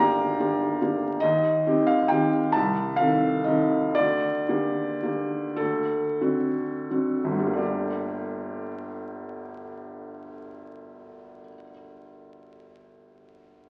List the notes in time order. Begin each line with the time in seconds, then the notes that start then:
Already playing: G1 D3 D5 F5 G5 A#5
0.00 A#3 G4
0.39 D3 A#3 G4
0.82 D3 A#3 G4
1.20 D#2 D#5
1.67 D#3 C4 G4
1.87 F5
2.08 D#3 C4 G4 G5
2.52 C2 A5
2.96 D#3 C4 F5
3.01 A4
3.44 D#3 C4 A4 D#5
3.95 D2 D5
4.49 D3 A#3 G4
5.03 D3 A#3 G4
5.56 D2 A4
6.21 D3 C4 F#4
6.91 D3 C4 F#4
7.24 G1
7.32 D2
7.39 G3
7.46 A#3
7.53 D4 G4